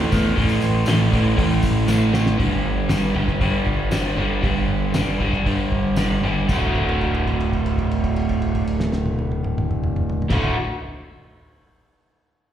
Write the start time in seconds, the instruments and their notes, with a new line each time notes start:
Already playing: overdriven electric guitar E3 A3
0.11 picked electric bass E2, overdriven electric guitar A2 E3 A3, kick, open hi-hat, tambourine
0.36 picked electric bass A1, overdriven electric guitar A2 E3 A3, kick, open hi-hat, tambourine
0.49 tambourine
0.61 picked electric bass A1, open hi-hat, tambourine
0.86 picked electric bass A1, overdriven electric guitar A2 E3 A3, snare, open hi-hat, tambourine
1.00 tambourine
1.12 picked electric bass A1, overdriven electric guitar A2 E3 A3, kick, open hi-hat, tambourine
1.36 picked electric bass A1, overdriven electric guitar A2 E3 A3, kick, open hi-hat, tambourine
1.52 tambourine
1.63 picked electric bass A1, kick, open hi-hat, tambourine
1.76 snare
1.87 picked electric bass A1, overdriven electric guitar A2 E3 A3, snare, tambourine
2.01 tambourine
2.12 overdriven electric guitar A2 E3 A3, snare, tambourine
2.26 snare
2.37 picked electric bass G1, overdriven electric guitar G2 D3 G3, kick, open hi-hat
2.64 picked electric bass G1
2.89 picked electric bass G1, overdriven electric guitar G2 D3 G3, snare, open hi-hat, tambourine
3.14 picked electric bass G1, overdriven electric guitar G2 D3 G3, kick
3.28 kick, snare
3.39 overdriven electric guitar G2 D3 G3, picked electric bass G2, kick, open hi-hat
3.67 picked electric bass G1, kick
3.91 picked electric bass G1, overdriven electric guitar G2 D3 G3, snare, open hi-hat, tambourine
4.16 picked electric bass G1, overdriven electric guitar G2 D3 G3
4.41 picked electric bass G1, overdriven electric guitar G2 D3 G3, kick, open hi-hat
4.69 picked electric bass G1
4.93 picked electric bass G1, overdriven electric guitar G2 D3 G3, snare, open hi-hat, tambourine
5.19 picked electric bass G1, overdriven electric guitar G2 D3 G3, kick
5.33 kick, snare
5.45 overdriven electric guitar G2 D3 G3, picked electric bass G2, kick, open hi-hat
5.72 picked electric bass G1, kick
5.96 picked electric bass G1, overdriven electric guitar G2 D3 G3, snare, open hi-hat, tambourine
6.22 picked electric bass G1, overdriven electric guitar G2 D3 G3
6.48 picked electric bass D1, overdriven electric guitar D2 A2 D3 A3 F#4, kick, crash, tambourine
6.75 kick, crash
6.89 crash
7.01 kick, crash
7.14 crash
7.27 kick, crash
7.40 crash
7.53 kick, crash
7.66 crash
7.78 kick, crash
7.91 crash
8.04 kick, crash
8.16 crash
8.29 kick, crash
8.42 crash
8.55 kick, crash
8.67 crash
8.80 snare
8.92 snare
9.06 high tom
9.19 high tom
9.32 high tom
9.44 mid tom
9.58 mid tom
9.71 mid tom
9.84 mid tom
9.96 mid tom
10.10 floor tom
10.22 floor tom
10.29 picked electric bass D1, overdriven electric guitar D2 A2 D3 A3, kick, snare, crash
10.33 overdriven electric guitar F#4